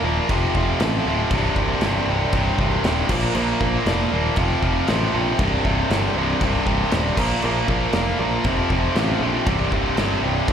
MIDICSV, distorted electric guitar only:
0, 0, Header, 1, 2, 480
1, 0, Start_track
1, 0, Tempo, 509338
1, 1242, Time_signature, 4, 2, 24, 8
1, 9922, End_track
2, 0, Start_track
2, 0, Title_t, "Distorted electric guitar"
2, 0, Program_c, 0, 30
2, 34, Note_on_c, 0, 46, 80
2, 38, Note_on_c, 0, 53, 93
2, 44, Note_on_c, 0, 58, 91
2, 263, Note_off_c, 0, 46, 0
2, 264, Note_off_c, 0, 53, 0
2, 267, Note_off_c, 0, 58, 0
2, 276, Note_on_c, 0, 41, 86
2, 284, Note_on_c, 0, 48, 101
2, 290, Note_on_c, 0, 53, 104
2, 515, Note_off_c, 0, 41, 0
2, 523, Note_off_c, 0, 48, 0
2, 526, Note_on_c, 0, 41, 84
2, 530, Note_off_c, 0, 53, 0
2, 534, Note_on_c, 0, 48, 101
2, 542, Note_on_c, 0, 53, 98
2, 738, Note_off_c, 0, 41, 0
2, 749, Note_on_c, 0, 41, 87
2, 752, Note_off_c, 0, 48, 0
2, 760, Note_off_c, 0, 53, 0
2, 763, Note_on_c, 0, 48, 99
2, 771, Note_on_c, 0, 53, 101
2, 991, Note_off_c, 0, 41, 0
2, 1000, Note_off_c, 0, 48, 0
2, 1002, Note_on_c, 0, 41, 84
2, 1004, Note_off_c, 0, 53, 0
2, 1011, Note_on_c, 0, 48, 91
2, 1015, Note_on_c, 0, 53, 99
2, 1228, Note_off_c, 0, 41, 0
2, 1232, Note_off_c, 0, 48, 0
2, 1234, Note_off_c, 0, 53, 0
2, 1248, Note_on_c, 0, 36, 95
2, 1257, Note_on_c, 0, 43, 110
2, 1265, Note_on_c, 0, 48, 116
2, 1478, Note_off_c, 0, 36, 0
2, 1482, Note_off_c, 0, 43, 0
2, 1489, Note_off_c, 0, 48, 0
2, 1489, Note_on_c, 0, 36, 76
2, 1493, Note_on_c, 0, 43, 90
2, 1500, Note_on_c, 0, 48, 97
2, 1720, Note_off_c, 0, 36, 0
2, 1731, Note_off_c, 0, 43, 0
2, 1731, Note_on_c, 0, 36, 89
2, 1734, Note_off_c, 0, 48, 0
2, 1743, Note_on_c, 0, 43, 102
2, 1745, Note_on_c, 0, 48, 112
2, 1962, Note_off_c, 0, 36, 0
2, 1965, Note_off_c, 0, 43, 0
2, 1971, Note_off_c, 0, 48, 0
2, 1974, Note_on_c, 0, 36, 88
2, 1976, Note_on_c, 0, 43, 97
2, 1982, Note_on_c, 0, 48, 97
2, 2196, Note_off_c, 0, 36, 0
2, 2204, Note_off_c, 0, 43, 0
2, 2207, Note_on_c, 0, 36, 100
2, 2208, Note_off_c, 0, 48, 0
2, 2215, Note_on_c, 0, 43, 103
2, 2219, Note_on_c, 0, 48, 106
2, 2426, Note_off_c, 0, 36, 0
2, 2436, Note_off_c, 0, 43, 0
2, 2437, Note_on_c, 0, 36, 87
2, 2441, Note_off_c, 0, 48, 0
2, 2448, Note_on_c, 0, 43, 85
2, 2453, Note_on_c, 0, 48, 101
2, 2658, Note_off_c, 0, 36, 0
2, 2667, Note_off_c, 0, 43, 0
2, 2669, Note_on_c, 0, 36, 90
2, 2673, Note_off_c, 0, 48, 0
2, 2678, Note_on_c, 0, 43, 96
2, 2684, Note_on_c, 0, 48, 110
2, 2903, Note_off_c, 0, 36, 0
2, 2908, Note_off_c, 0, 43, 0
2, 2911, Note_off_c, 0, 48, 0
2, 2917, Note_on_c, 0, 46, 88
2, 2923, Note_on_c, 0, 53, 98
2, 2932, Note_on_c, 0, 58, 102
2, 3142, Note_off_c, 0, 46, 0
2, 3148, Note_off_c, 0, 53, 0
2, 3153, Note_on_c, 0, 46, 94
2, 3155, Note_off_c, 0, 58, 0
2, 3159, Note_on_c, 0, 53, 105
2, 3166, Note_on_c, 0, 58, 102
2, 3383, Note_off_c, 0, 46, 0
2, 3390, Note_off_c, 0, 53, 0
2, 3394, Note_off_c, 0, 58, 0
2, 3395, Note_on_c, 0, 46, 80
2, 3401, Note_on_c, 0, 53, 83
2, 3405, Note_on_c, 0, 58, 89
2, 3624, Note_off_c, 0, 46, 0
2, 3633, Note_off_c, 0, 53, 0
2, 3635, Note_on_c, 0, 46, 99
2, 3639, Note_off_c, 0, 58, 0
2, 3644, Note_on_c, 0, 53, 95
2, 3650, Note_on_c, 0, 58, 98
2, 3869, Note_off_c, 0, 46, 0
2, 3872, Note_off_c, 0, 53, 0
2, 3878, Note_off_c, 0, 58, 0
2, 3880, Note_on_c, 0, 46, 85
2, 3884, Note_on_c, 0, 53, 93
2, 3890, Note_on_c, 0, 58, 97
2, 4110, Note_off_c, 0, 46, 0
2, 4111, Note_off_c, 0, 53, 0
2, 4114, Note_off_c, 0, 58, 0
2, 4114, Note_on_c, 0, 41, 90
2, 4118, Note_on_c, 0, 48, 95
2, 4129, Note_on_c, 0, 53, 104
2, 4337, Note_off_c, 0, 41, 0
2, 4343, Note_off_c, 0, 48, 0
2, 4348, Note_on_c, 0, 41, 79
2, 4355, Note_off_c, 0, 53, 0
2, 4355, Note_on_c, 0, 48, 86
2, 4366, Note_on_c, 0, 53, 87
2, 4584, Note_off_c, 0, 41, 0
2, 4593, Note_off_c, 0, 48, 0
2, 4596, Note_on_c, 0, 41, 88
2, 4598, Note_off_c, 0, 53, 0
2, 4604, Note_on_c, 0, 48, 101
2, 4610, Note_on_c, 0, 53, 98
2, 4820, Note_off_c, 0, 41, 0
2, 4831, Note_off_c, 0, 48, 0
2, 4831, Note_on_c, 0, 41, 78
2, 4836, Note_off_c, 0, 53, 0
2, 4843, Note_on_c, 0, 48, 90
2, 4848, Note_on_c, 0, 53, 94
2, 5066, Note_off_c, 0, 41, 0
2, 5071, Note_off_c, 0, 48, 0
2, 5074, Note_off_c, 0, 53, 0
2, 5085, Note_on_c, 0, 36, 107
2, 5095, Note_on_c, 0, 43, 109
2, 5097, Note_on_c, 0, 48, 115
2, 5308, Note_off_c, 0, 36, 0
2, 5319, Note_off_c, 0, 43, 0
2, 5319, Note_on_c, 0, 36, 80
2, 5325, Note_off_c, 0, 48, 0
2, 5330, Note_on_c, 0, 43, 85
2, 5337, Note_on_c, 0, 48, 93
2, 5546, Note_off_c, 0, 36, 0
2, 5555, Note_off_c, 0, 43, 0
2, 5557, Note_on_c, 0, 36, 87
2, 5563, Note_off_c, 0, 48, 0
2, 5567, Note_on_c, 0, 43, 98
2, 5574, Note_on_c, 0, 48, 106
2, 5798, Note_off_c, 0, 36, 0
2, 5802, Note_off_c, 0, 43, 0
2, 5809, Note_off_c, 0, 48, 0
2, 5809, Note_on_c, 0, 36, 79
2, 5813, Note_on_c, 0, 43, 95
2, 5820, Note_on_c, 0, 48, 99
2, 6031, Note_off_c, 0, 36, 0
2, 6036, Note_off_c, 0, 43, 0
2, 6042, Note_on_c, 0, 36, 105
2, 6047, Note_on_c, 0, 43, 102
2, 6049, Note_off_c, 0, 48, 0
2, 6061, Note_on_c, 0, 48, 116
2, 6274, Note_off_c, 0, 36, 0
2, 6283, Note_off_c, 0, 48, 0
2, 6285, Note_off_c, 0, 43, 0
2, 6285, Note_on_c, 0, 36, 80
2, 6294, Note_on_c, 0, 48, 100
2, 6296, Note_on_c, 0, 43, 91
2, 6510, Note_off_c, 0, 36, 0
2, 6518, Note_off_c, 0, 43, 0
2, 6521, Note_on_c, 0, 36, 99
2, 6526, Note_off_c, 0, 48, 0
2, 6530, Note_on_c, 0, 43, 99
2, 6537, Note_on_c, 0, 48, 109
2, 6750, Note_off_c, 0, 36, 0
2, 6755, Note_off_c, 0, 43, 0
2, 6758, Note_off_c, 0, 48, 0
2, 6766, Note_on_c, 0, 46, 83
2, 6772, Note_on_c, 0, 53, 101
2, 6776, Note_on_c, 0, 58, 104
2, 6988, Note_off_c, 0, 46, 0
2, 6998, Note_off_c, 0, 53, 0
2, 6999, Note_on_c, 0, 46, 104
2, 7003, Note_off_c, 0, 58, 0
2, 7009, Note_on_c, 0, 53, 106
2, 7014, Note_on_c, 0, 58, 115
2, 7223, Note_off_c, 0, 46, 0
2, 7232, Note_off_c, 0, 53, 0
2, 7235, Note_on_c, 0, 46, 80
2, 7238, Note_off_c, 0, 58, 0
2, 7243, Note_on_c, 0, 53, 89
2, 7250, Note_on_c, 0, 58, 86
2, 7465, Note_off_c, 0, 46, 0
2, 7472, Note_off_c, 0, 53, 0
2, 7476, Note_on_c, 0, 46, 93
2, 7478, Note_off_c, 0, 58, 0
2, 7483, Note_on_c, 0, 53, 92
2, 7489, Note_on_c, 0, 58, 95
2, 7708, Note_off_c, 0, 46, 0
2, 7713, Note_off_c, 0, 53, 0
2, 7720, Note_off_c, 0, 58, 0
2, 7720, Note_on_c, 0, 46, 84
2, 7724, Note_on_c, 0, 53, 95
2, 7731, Note_on_c, 0, 58, 99
2, 7949, Note_off_c, 0, 46, 0
2, 7951, Note_off_c, 0, 53, 0
2, 7954, Note_off_c, 0, 58, 0
2, 7958, Note_on_c, 0, 41, 96
2, 7963, Note_on_c, 0, 48, 94
2, 7978, Note_on_c, 0, 53, 95
2, 8203, Note_off_c, 0, 41, 0
2, 8207, Note_off_c, 0, 48, 0
2, 8211, Note_off_c, 0, 53, 0
2, 8214, Note_on_c, 0, 41, 83
2, 8219, Note_on_c, 0, 48, 91
2, 8222, Note_on_c, 0, 53, 90
2, 8435, Note_off_c, 0, 41, 0
2, 8444, Note_off_c, 0, 48, 0
2, 8446, Note_off_c, 0, 53, 0
2, 8447, Note_on_c, 0, 41, 101
2, 8456, Note_on_c, 0, 48, 93
2, 8458, Note_on_c, 0, 53, 101
2, 8669, Note_off_c, 0, 41, 0
2, 8673, Note_off_c, 0, 48, 0
2, 8680, Note_on_c, 0, 41, 92
2, 8681, Note_off_c, 0, 53, 0
2, 8685, Note_on_c, 0, 48, 91
2, 8692, Note_on_c, 0, 53, 97
2, 8908, Note_off_c, 0, 41, 0
2, 8910, Note_off_c, 0, 48, 0
2, 8914, Note_off_c, 0, 53, 0
2, 8918, Note_on_c, 0, 36, 110
2, 8926, Note_on_c, 0, 43, 97
2, 8932, Note_on_c, 0, 48, 113
2, 9151, Note_off_c, 0, 36, 0
2, 9155, Note_off_c, 0, 43, 0
2, 9162, Note_off_c, 0, 48, 0
2, 9162, Note_on_c, 0, 36, 87
2, 9166, Note_on_c, 0, 43, 86
2, 9174, Note_on_c, 0, 48, 87
2, 9387, Note_off_c, 0, 36, 0
2, 9393, Note_off_c, 0, 43, 0
2, 9398, Note_on_c, 0, 36, 95
2, 9401, Note_off_c, 0, 48, 0
2, 9404, Note_on_c, 0, 43, 111
2, 9412, Note_on_c, 0, 48, 105
2, 9627, Note_off_c, 0, 36, 0
2, 9636, Note_off_c, 0, 43, 0
2, 9638, Note_on_c, 0, 36, 85
2, 9644, Note_off_c, 0, 48, 0
2, 9647, Note_on_c, 0, 43, 91
2, 9655, Note_on_c, 0, 48, 85
2, 9869, Note_off_c, 0, 36, 0
2, 9876, Note_off_c, 0, 43, 0
2, 9880, Note_on_c, 0, 36, 95
2, 9883, Note_off_c, 0, 48, 0
2, 9887, Note_on_c, 0, 43, 95
2, 9922, Note_off_c, 0, 36, 0
2, 9922, Note_off_c, 0, 43, 0
2, 9922, End_track
0, 0, End_of_file